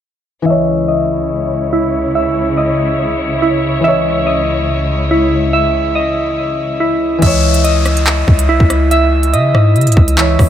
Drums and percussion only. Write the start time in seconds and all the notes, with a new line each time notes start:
7.22 kick, closed hi-hat, crash
7.54 closed hi-hat
7.65 closed hi-hat
7.86 cross-stick, closed hi-hat
7.97 closed hi-hat
8.07 clap
8.28 kick
8.39 closed hi-hat
8.60 kick
8.70 cross-stick, closed hi-hat
8.91 closed hi-hat
9.23 closed hi-hat
9.34 closed hi-hat
9.55 cross-stick
9.76 closed hi-hat
9.81 closed hi-hat
9.87 closed hi-hat
9.92 closed hi-hat
9.97 kick
10.08 closed hi-hat
10.18 clap
10.39 kick, cross-stick, open hi-hat